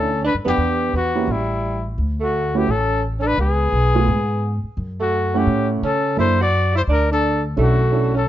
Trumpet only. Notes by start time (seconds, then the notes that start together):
Already playing: A4
0.26 B4
0.48 G4
0.97 F#4
1.32 E4
2.23 F#4
2.58 G4
2.71 A4
3.22 A4
3.27 B4
3.41 G#4
5.02 F#4
5.38 G4
5.85 A4
6.20 C5
6.42 D5
6.78 C5
6.92 A#4
7.13 A4
7.62 F#4
8.17 A4